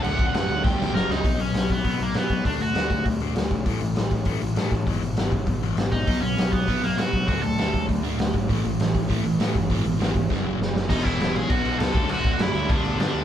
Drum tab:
CC |xxxx----|--------|--------|--------|
HH |--------|oooooooo|oooooooo|oooooooo|
SD |--o-oooo|--o---o-|--o---o-|--o---o-|
BD |-o--o---|o--oo--o|o--oo--o|o--oo--o|

CC |--------|--------|--------|--------|
HH |oooooooo|oooooooo|oooooooo|oooooooo|
SD |--o---o-|--o---o-|--o---o-|--o---o-|
BD |o--oo--o|o--oo--o|o--oo--o|o--oo--o|

CC |--------|xxxxxxxx|xxxxxxxx|
HH |oooo----|--------|--------|
SD |--o-o-oo|--o---o-|--o---o-|
BD |o--oo---|oo--o--o|-o--o---|